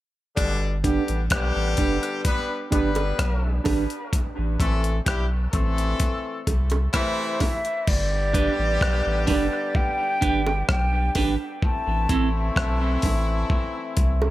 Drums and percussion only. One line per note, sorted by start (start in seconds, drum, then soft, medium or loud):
0.37 kick loud
0.37 closed hi-hat medium
0.84 kick medium
0.84 closed hi-hat medium
1.08 closed hi-hat medium
1.30 kick loud
1.30 cross-stick loud
1.30 closed hi-hat medium
1.77 kick medium
1.77 closed hi-hat medium
2.03 closed hi-hat medium
2.25 kick loud
2.25 closed hi-hat medium
2.72 kick loud
2.72 closed hi-hat medium
2.72 high bongo soft
2.95 closed hi-hat soft
2.95 high bongo medium
3.19 kick loud
3.19 cross-stick loud
3.19 closed hi-hat medium
3.65 kick medium
3.65 open hi-hat medium
3.65 high bongo medium
3.65 low bongo medium
3.90 closed hi-hat medium
4.13 kick loud
4.13 closed hi-hat medium
4.60 kick medium
4.60 closed hi-hat medium
4.84 closed hi-hat medium
5.06 kick loud
5.06 cross-stick loud
5.06 closed hi-hat medium
5.53 kick medium
5.53 closed hi-hat medium
5.78 closed hi-hat medium
6.00 kick loud
6.00 closed hi-hat medium
6.47 kick loud
6.47 closed hi-hat medium
6.47 high bongo soft
6.70 closed hi-hat soft
6.70 high bongo medium
6.94 kick loud
6.94 cross-stick loud
6.94 closed hi-hat medium
7.40 kick medium
7.40 open hi-hat medium
7.40 high bongo medium
7.40 low bongo medium
7.65 closed hi-hat medium
7.87 kick loud
7.87 crash medium
8.34 kick medium
8.34 closed hi-hat medium
8.81 kick loud
8.81 cross-stick loud
9.27 kick medium
9.27 open hi-hat medium
9.27 low bongo medium
9.75 kick loud
10.22 kick medium
10.22 closed hi-hat medium
10.46 high bongo medium
10.69 kick loud
10.69 cross-stick loud
11.15 kick medium
11.15 open hi-hat medium
11.15 high bongo medium
11.15 low bongo medium
11.62 kick loud
12.09 kick loud
12.09 closed hi-hat medium
12.56 kick loud
12.56 cross-stick loud
13.02 kick medium
13.02 open hi-hat medium
13.02 low bongo medium
13.50 kick loud
13.97 kick loud
13.97 closed hi-hat medium
14.22 high bongo medium